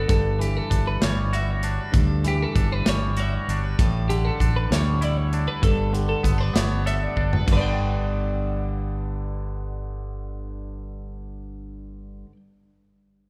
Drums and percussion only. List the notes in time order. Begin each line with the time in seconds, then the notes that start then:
0.09 kick, closed hi-hat
0.41 closed hi-hat
0.71 kick, closed hi-hat
1.02 snare, closed hi-hat
1.33 closed hi-hat
1.63 closed hi-hat
1.94 kick, closed hi-hat
2.25 closed hi-hat
2.56 kick, closed hi-hat
2.86 snare, closed hi-hat
3.17 closed hi-hat
3.49 closed hi-hat
3.79 kick, closed hi-hat
4.10 closed hi-hat
4.40 kick, closed hi-hat
4.72 snare, closed hi-hat
5.02 closed hi-hat
5.33 closed hi-hat
5.63 kick, closed hi-hat
5.95 closed hi-hat
6.24 kick, closed hi-hat
6.56 snare, closed hi-hat
6.87 closed hi-hat
7.17 kick
7.33 floor tom
7.48 kick, crash